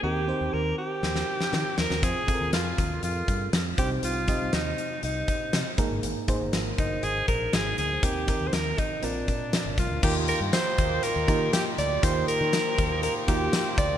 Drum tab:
CC |----------------|----------------|----------------|----------------|
HH |----------------|x-x-x-x-x-x-x-x-|x-x-x-x-x-x-x-x-|x-x-x-x-x-x-x-x-|
TB |----------------|----------------|----------------|----------------|
SD |--------oo-oo-oo|----o-------o---|----o-------o---|----o-------o---|
BD |----------------|o-o---o---o---o-|--o-------o---o-|--o---o---o-----|

CC |----------------|x---------------|----------------|
HH |x-x-x-x-x-x-x-x-|--x-x-x-x-x-x-x-|x-x-x-x-x-x-x-x-|
TB |----------------|----x-------x---|----x-------x---|
SD |----o-------o---|----o-------o---|----o-------o---|
BD |o-o---o---o---o-|o-----o---o-----|o-----o---o---o-|